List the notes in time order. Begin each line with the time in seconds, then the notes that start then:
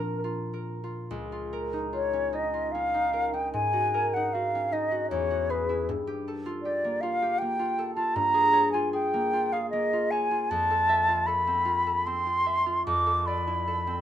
Already playing: A#2 F3 A#3 C4 D4 F4 A#4 C5
0.24 F4
0.53 A#4
0.84 F4
1.11 C#2
1.32 F4
1.53 A#4
1.73 D#4
1.93 F4 C#5
2.13 C#4
2.33 D#4 D#5
2.54 F4
2.72 C#4 F5
2.94 D#4
3.13 A#4
3.33 D#4 G5
3.53 G#2 G#5
3.73 F#4
3.94 A#4
4.14 D#4 F#5
4.33 F#4 F5
4.55 C#4
4.73 D#4 D#5
4.91 F#4
5.11 E2 C#5
5.30 F#4
5.50 G#4 B4
5.69 E4
5.89 G2
6.07 G4
6.28 A4
6.46 F4
6.63 G4 D5
6.84 A#3
7.01 F4 F5
7.22 G4
7.39 A#3 G5
7.59 F4
7.78 A4
7.95 F4 A5
8.15 G2 A#5
8.34 G#4
8.53 C#5
8.72 F4 G#5
8.93 G#4 G5
9.14 A#3
9.33 F4
9.53 G#4 F5
9.70 A#3 D#5
9.93 F4
10.11 C#5 G#5
10.31 F4
10.50 F2 A5
10.70 A4
10.89 E5
11.08 F4
11.26 A4 B5
11.47 C4
11.65 F4
11.87 A4
12.06 C4 C6
12.26 F4
12.46 E5
12.66 F4
12.86 F2 D6
13.06 A4
13.26 D5 B5
13.47 E4
13.67 A4
13.87 C4